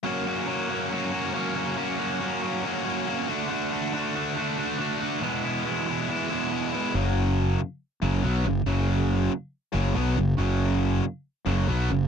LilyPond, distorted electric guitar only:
\new Staff \with { instrumentName = "Distorted electric guitar" } { \time 4/4 \key fis \major \tempo 4 = 139 <fis, cis fis ais cis' fis'>8 <fis ais cis' fis'>8 <fis ais cis' fis'>8 <fis, cis fis ais cis' fis'>8 <fis ais cis' fis'>8 <fis ais cis' fis'>8 <fis, cis fis ais cis' fis'>8 <fis ais cis' fis'>8 | <fis, cis fis ais cis' fis'>8 <fis ais cis' fis'>8 <fis ais cis' fis'>8 <fis, cis fis ais cis' fis'>8 <fis ais cis' fis'>8 <fis ais cis' fis'>8 <fis, cis fis ais cis' fis'>8 <d a d' fis'>8 | <d a d' fis'>8 <a d' fis'>8 <d a d' fis'>8 <d a d' fis'>8 <d a d' fis'>8 <a d' fis'>8 <d a d' fis'>8 <a d' fis'>8 | <e, b, e gis b e'>8 <e gis b e'>8 <e gis b e'>8 <e, b, e gis b e'>8 <e gis b e'>8 <e gis b e'>8 <e, b, e gis b e'>8 <e gis b e'>8 |
<fis, cis fis>4. r4 <fis, cis fis>8 <b, fis b>8 <fis, cis>8 | <fis, cis fis>4. r4 <fis, cis fis>8 <b, fis b>8 <fis, cis>8 | <fis, cis fis>4. r4 <fis, cis fis>8 <b, fis b>8 <fis, cis>8 | }